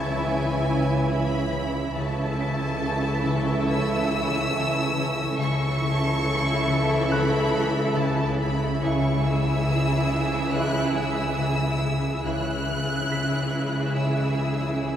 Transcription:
Already playing: double bass section C#2, harp C#3, trombone section C#3 E3, cello section C#3, viola section E3 E4, french horn section C#4 E4, violin section E4 E5 A5 C#6 G#6, grand piano G#5 G#6
0.24 harp C#3, violin section G#5
0.67 harp C#3
1.10 harp C#3, violin section B5
1.52 harp C#3
1.95 double bass section C#2, trombone section C#3 E3, harp C#3, cello section C#3, viola section E3 E4, french horn section A3 E4, violin section A4 E5 A5 C#6 E6 B6
2.38 harp C#3, grand piano B6
2.81 harp C#3
3.24 harp C#3
3.66 harp C#3, violin section E6
4.09 harp C#3
4.52 harp C#3
4.96 harp C#3
5.38 double bass section C#2, harp C#3, trombone section C#3 E3, cello section C#3, viola section E3 E4, french horn section A3 E4, violin section A4 E5 C#6
5.48 violin section A#6
5.81 harp C#3
6.24 harp C#3
6.66 harp C#3
7.09 harp C#3, violin section B5, grand piano F#6
7.53 harp C#3
7.95 harp C#3, violin section A5
8.38 harp C#3, violin section B5
8.80 double bass section C#2, trombone section C#3 E3, harp C#3, cello section C#3, viola section E3 E4, french horn section G#3 E4, violin section G#4 E5 C#6
9.24 harp C#3, violin section E6
9.66 harp C#3
10.09 harp C#3
10.51 harp C#3, trombone section C#3 E3, french horn section G#3 E4, violin section F#6
10.95 harp C#3, violin section E6
11.38 harp C#3
11.80 harp C#3
12.23 double bass section C#2, harp C#3, trombone section C#3 E3, cello section C#3, viola section E3 E4, french horn section G#3 E4, violin section G#4 E5 F#6
12.66 harp C#3
13.10 harp C#3, grand piano B6
13.52 harp C#3
13.95 trombone section C#3 E3, harp C#3, french horn section G#3 E4, violin section E6
14.38 harp C#3
14.81 harp C#3

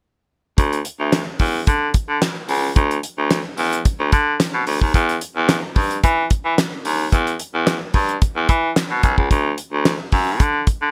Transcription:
0.58 baritone saxophone D2, kick, closed hi-hat
0.73 closed hi-hat
0.85 closed hi-hat
1.00 baritone saxophone D2
1.13 snare, clap, closed hi-hat
1.39 baritone saxophone E2, kick, open hi-hat
1.67 baritone saxophone D3, kick, closed hi-hat
1.94 kick, closed hi-hat
2.09 baritone saxophone D3
2.22 snare, clap, closed hi-hat
2.49 baritone saxophone C#2, open hi-hat
2.76 baritone saxophone D2, kick, closed hi-hat
2.91 closed hi-hat
3.03 closed hi-hat
3.18 baritone saxophone D2
3.31 snare, clap, closed hi-hat
3.57 baritone saxophone E2, open hi-hat
3.73 closed hi-hat
3.85 kick, closed hi-hat
4.00 baritone saxophone D2
4.12 baritone saxophone D3, kick, closed hi-hat
4.40 snare, clap, closed hi-hat
4.54 baritone saxophone B2
4.67 baritone saxophone D2, open hi-hat
4.81 baritone saxophone D#2, kick
4.94 baritone saxophone E2, kick, closed hi-hat
5.09 closed hi-hat
5.21 closed hi-hat
5.36 baritone saxophone E2
5.49 snare, clap, closed hi-hat
5.76 baritone saxophone G2, kick, open hi-hat
5.91 closed hi-hat
6.04 baritone saxophone E3, kick, closed hi-hat
6.30 kick, closed hi-hat
6.45 baritone saxophone E3
6.58 snare, clap, closed hi-hat
6.85 baritone saxophone D#2, open hi-hat
7.12 baritone saxophone E2, kick, closed hi-hat
7.27 closed hi-hat
7.40 closed hi-hat
7.54 baritone saxophone E2
7.67 snare, clap, closed hi-hat
7.94 baritone saxophone G2, kick, open hi-hat
8.09 closed hi-hat
8.22 kick, closed hi-hat
8.36 baritone saxophone E2
8.49 baritone saxophone E3, kick, closed hi-hat
8.76 snare, clap, closed hi-hat
8.91 baritone saxophone B2
9.03 baritone saxophone C2, kick, closed hi-hat
9.18 baritone saxophone C#2, kick
9.31 baritone saxophone D2, kick, closed hi-hat
9.58 closed hi-hat
9.72 baritone saxophone D2
9.85 snare, clap, closed hi-hat
10.12 baritone saxophone F#2, kick, open hi-hat
10.40 baritone saxophone D3, kick, closed hi-hat
10.67 kick, closed hi-hat
10.82 baritone saxophone D3

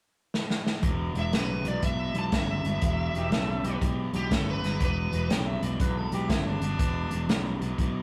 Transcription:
0.34 snare
0.50 snare
0.66 snare
0.82 fingered electric bass E1, overdriven electric guitar E2 B2, kick, closed hi-hat
1.14 fingered electric bass E1, overdriven electric guitar E2 B2, closed hi-hat
1.19 lead electric guitar E5
1.32 fingered electric bass B1, overdriven electric guitar E2 C#3, lead electric guitar B4, snare, closed hi-hat
1.65 fingered electric bass B1, overdriven electric guitar E2 B2, lead electric guitar D5, closed hi-hat
1.82 fingered electric bass B1, overdriven electric guitar E2 B2, lead electric guitar E5, kick, closed hi-hat
2.14 fingered electric bass B1, overdriven electric guitar E2 B2, closed hi-hat
2.19 lead electric guitar A5
2.32 fingered electric bass G1, overdriven electric guitar E2 C#3, lead electric guitar E5, kick, snare, closed hi-hat
2.64 fingered electric bass G1, overdriven electric guitar E2 B2, closed hi-hat
2.82 fingered electric bass E1, overdriven electric guitar E2 B2, kick, closed hi-hat
3.13 fingered electric bass E1, overdriven electric guitar E2 B2, harmonica G4, closed hi-hat
3.31 fingered electric bass B1, overdriven electric guitar E2 C#3, harmonica A4, snare, closed hi-hat
3.63 fingered electric bass B1, overdriven electric guitar E2 B2, harmonica G4, closed hi-hat
3.81 fingered electric bass B1, overdriven electric guitar E2 B2, kick, closed hi-hat
4.13 fingered electric bass B1, overdriven electric guitar E2 B2, lead electric guitar G4, closed hi-hat
4.31 fingered electric bass G1, overdriven electric guitar E2 C#3, lead electric guitar A4, kick, snare, closed hi-hat
4.50 lead electric guitar B4
4.62 fingered electric bass G1, overdriven electric guitar E2 B2, snare, closed hi-hat
4.80 fingered electric bass E1, overdriven electric guitar E2 B2, kick, closed hi-hat
4.84 lead electric guitar B4
5.11 fingered electric bass E1, overdriven electric guitar E2 B2, closed hi-hat
5.29 fingered electric bass B1, overdriven electric guitar E2 C#3, harmonica G5, snare, closed hi-hat
5.48 harmonica E5
5.61 fingered electric bass B1, overdriven electric guitar E2 B2, harmonica D5, closed hi-hat
5.80 fingered electric bass B1, overdriven electric guitar E2 B2, harmonica B4, kick, closed hi-hat
5.98 harmonica A4
6.11 fingered electric bass B1, overdriven electric guitar E2 B2, harmonica G4, closed hi-hat
6.29 fingered electric bass G1, overdriven electric guitar E2 C#3, harmonica E4, kick, snare, closed hi-hat
6.47 harmonica D4
6.60 fingered electric bass G1, overdriven electric guitar E2 B2, closed hi-hat
6.79 overdriven electric guitar E2 B2, kick, closed hi-hat
7.10 fingered electric bass E1, overdriven electric guitar E2 B2, closed hi-hat
7.28 fingered electric bass B1, overdriven electric guitar E2 C#3, snare, closed hi-hat
7.59 fingered electric bass B1, overdriven electric guitar E2 B2, closed hi-hat
7.78 fingered electric bass B1, overdriven electric guitar E2 B2, kick, closed hi-hat

